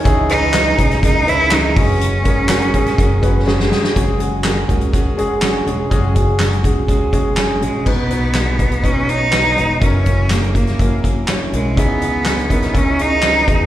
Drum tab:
CC |----------------|----------------|----------------|----------------|
HH |x-x-x-xxx-x-x-o-|x-x-xxxxx-x-----|x-x-x-xxx-x-x-x-|x-x-xxx-x-x-x-x-|
CP |----x-------x---|----x-----------|----x-------x---|----x-------x---|
SD |----o--o----o---|----o--o----oooo|----o-------o---|----o-------o---|
BD |o-----o-o-----o-|--o---o-o-o-----|o-----o-o-------|o-o---o-o-o-----|

CC |x---------------|----------------|----------------|
HH |--x-x-xxx-x-x-x-|x-x-xxxxx-x-x-x-|x-x-xxxxx-x-x-x-|
CP |----x-------x---|----x-------x---|----x-------x---|
SD |----o-------o---|----o--o----o---|----o--o----o---|
BD |o-----o-o-------|o-o---o-o-o-----|o-----o-o-----o-|